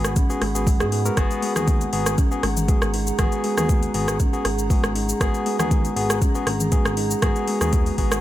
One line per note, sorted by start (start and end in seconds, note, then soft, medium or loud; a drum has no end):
0.00 0.22 G#1 medium
0.00 0.13 B3 medium
0.00 0.13 F#4 medium
0.00 0.13 G#4 medium
0.00 8.21 G#4 medium
0.00 8.21 F#5 medium
0.00 1.16 B5 medium
0.04 cross-stick medium
0.04 closed hi-hat soft
0.04 shaker medium
0.16 0.29 C#4 medium
0.16 kick loud
0.16 closed hi-hat medium
0.16 shaker medium
0.30 0.43 B3 medium
0.30 0.43 F#4 medium
0.30 0.43 G#4 loud
0.30 shaker soft
0.41 0.82 G#1 medium
0.41 0.54 G#3 loud
0.41 cross-stick medium
0.41 open hi-hat medium
0.55 0.68 B3 medium
0.55 0.68 F#4 medium
0.55 0.68 G#4 medium
0.55 closed hi-hat soft
0.55 shaker medium
0.67 0.79 G#3 loud
0.67 kick loud
0.67 open hi-hat medium
0.67 shaker medium
0.80 1.10 G#2 loud
0.80 1.02 B3 medium
0.80 1.02 F#4 medium
0.80 0.87 G#4 loud
0.80 1.02 G#4 medium
0.80 cross-stick medium
0.80 closed hi-hat soft
0.80 shaker soft
0.92 1.04 G#3 medium
0.92 open hi-hat medium
1.05 1.16 G#3 medium
1.05 1.16 B3 medium
1.05 1.16 F#4 medium
1.05 1.16 A#4 medium
1.05 closed hi-hat soft
1.05 shaker medium
1.17 1.26 G#1 loud
1.17 1.29 G#3 medium
1.17 1.53 B3 loud
1.17 1.53 F#4 medium
1.17 1.53 G#4 loud
1.17 8.21 A#5 medium
1.17 kick loud
1.17 cross-stick medium
1.17 closed hi-hat medium
1.17 shaker medium
1.31 closed hi-hat soft
1.31 shaker soft
1.42 1.55 G#3 medium
1.42 open hi-hat medium
1.56 1.86 D#2 medium
1.56 1.90 B3 medium
1.56 1.67 D#4 medium
1.56 1.90 F#4 medium
1.56 1.90 G#4 medium
1.56 cross-stick medium
1.56 mid tom loud
1.56 shaker medium
1.68 1.75 G#3 medium
1.68 kick loud
1.68 closed hi-hat medium
1.68 shaker medium
1.81 closed hi-hat soft
1.81 shaker soft
1.93 2.23 G#1 medium
1.93 2.15 B3 medium
1.93 2.15 F#4 medium
1.93 2.15 G#4 medium
1.93 open hi-hat medium
2.06 cross-stick medium
2.06 closed hi-hat soft
2.06 shaker medium
2.18 2.30 C#4 medium
2.18 kick loud
2.18 closed hi-hat medium
2.18 shaker medium
2.31 2.45 B3 medium
2.31 2.45 F#4 medium
2.31 2.45 G#4 loud
2.31 shaker soft
2.43 2.74 G#1 medium
2.43 2.56 G#3 medium
2.43 cross-stick medium
2.43 open hi-hat medium
2.57 closed hi-hat soft
2.57 mid tom medium
2.57 shaker medium
2.68 2.76 G#3 medium
2.68 2.91 B3 medium
2.68 2.91 F#4 medium
2.68 2.91 G#4 medium
2.68 kick loud
2.68 closed hi-hat medium
2.68 shaker medium
2.82 3.12 G#1 medium
2.82 cross-stick medium
2.82 shaker soft
2.94 3.07 D#4 medium
2.94 open hi-hat medium
3.07 closed hi-hat soft
3.07 shaker medium
3.19 3.27 G#1 loud
3.19 3.31 G#3 medium
3.19 3.54 B3 loud
3.19 3.54 F#4 medium
3.19 3.54 G#4 loud
3.19 kick loud
3.19 cross-stick medium
3.19 closed hi-hat medium
3.19 mid tom medium
3.19 shaker medium
3.32 closed hi-hat soft
3.32 shaker soft
3.44 3.56 G#3 medium
3.44 open hi-hat medium
3.57 3.87 D#2 medium
3.57 3.92 B3 medium
3.57 3.69 D#4 medium
3.57 3.92 F#4 medium
3.57 3.92 G#4 medium
3.57 cross-stick medium
3.57 mid tom loud
3.57 shaker medium
3.69 3.77 G#3 medium
3.69 kick loud
3.69 closed hi-hat medium
3.69 shaker medium
3.83 closed hi-hat soft
3.83 shaker soft
3.94 4.25 G#1 medium
3.94 4.17 B3 medium
3.94 4.17 F#4 medium
3.94 4.17 G#4 medium
3.94 open hi-hat medium
4.08 cross-stick medium
4.08 closed hi-hat soft
4.08 shaker medium
4.20 4.32 C#4 medium
4.20 kick loud
4.20 closed hi-hat medium
4.20 shaker medium
4.33 4.46 B3 medium
4.33 4.46 F#4 medium
4.33 4.46 G#4 loud
4.33 shaker soft
4.45 4.75 G#1 medium
4.45 4.57 G#3 medium
4.45 cross-stick medium
4.45 open hi-hat medium
4.59 closed hi-hat soft
4.59 shaker medium
4.70 4.78 G#3 medium
4.70 4.92 B3 medium
4.70 4.92 F#4 medium
4.70 4.93 G#4 medium
4.70 kick loud
4.70 open hi-hat medium
4.70 shaker medium
4.84 5.13 G#1 medium
4.84 cross-stick medium
4.84 shaker soft
4.95 5.08 D#4 medium
4.95 open hi-hat medium
5.09 closed hi-hat soft
5.09 shaker medium
5.21 5.29 G#1 loud
5.21 5.33 G#3 medium
5.21 5.56 B3 loud
5.21 5.56 F#4 loud
5.21 5.56 G#4 loud
5.21 kick loud
5.21 cross-stick medium
5.21 closed hi-hat medium
5.21 shaker medium
5.34 closed hi-hat soft
5.34 shaker soft
5.46 5.58 G#3 medium
5.46 open hi-hat medium
5.59 5.89 D#2 medium
5.59 5.94 B3 medium
5.59 5.70 D#4 medium
5.59 5.94 F#4 medium
5.59 5.93 G#4 medium
5.59 cross-stick medium
5.59 mid tom loud
5.59 shaker medium
5.71 5.78 G#3 medium
5.71 kick loud
5.71 closed hi-hat medium
5.71 shaker medium
5.85 closed hi-hat soft
5.85 shaker soft
5.96 6.27 G#1 medium
5.96 6.19 B3 medium
5.96 6.19 F#4 medium
5.96 6.19 G#4 medium
5.96 open hi-hat medium
6.10 cross-stick loud
6.10 closed hi-hat soft
6.10 shaker medium
6.22 6.34 C#4 medium
6.22 kick loud
6.22 closed hi-hat medium
6.22 shaker medium
6.35 6.48 B3 medium
6.35 6.48 F#4 medium
6.35 6.48 G#4 loud
6.35 shaker soft
6.46 6.77 G#1 medium
6.46 6.59 G#3 medium
6.46 cross-stick medium
6.46 open hi-hat loud
6.60 closed hi-hat soft
6.60 mid tom medium
6.60 shaker medium
6.72 6.79 G#3 medium
6.72 6.94 B3 medium
6.72 6.94 F#4 medium
6.72 6.94 G#4 medium
6.72 kick loud
6.72 closed hi-hat medium
6.72 shaker medium
6.85 7.15 G#1 medium
6.85 cross-stick medium
6.85 shaker soft
6.97 7.10 D#4 medium
6.97 open hi-hat loud
7.11 closed hi-hat soft
7.11 shaker medium
7.22 7.31 G#1 loud
7.22 7.35 G#3 medium
7.22 7.58 B3 loud
7.22 7.58 F#4 loud
7.22 7.58 G#4 loud
7.22 kick loud
7.22 cross-stick medium
7.22 closed hi-hat medium
7.22 mid tom medium
7.22 shaker medium
7.36 closed hi-hat soft
7.36 shaker soft
7.48 7.60 G#3 medium
7.48 open hi-hat loud
7.61 7.91 D#2 medium
7.61 7.95 B3 medium
7.61 7.72 D#4 medium
7.61 7.95 F#4 medium
7.61 7.95 G#4 medium
7.61 cross-stick medium
7.61 closed hi-hat soft
7.61 mid tom medium
7.61 shaker medium
7.73 7.80 G#3 medium
7.73 kick loud
7.73 closed hi-hat medium
7.73 shaker medium
7.86 open hi-hat medium
7.86 shaker soft
7.98 8.21 G#1 medium
7.98 8.20 B3 medium
7.98 8.20 F#4 medium
7.98 8.20 G#4 medium
7.98 kick medium
7.98 open hi-hat loud
8.12 cross-stick loud
8.12 closed hi-hat soft
8.12 shaker medium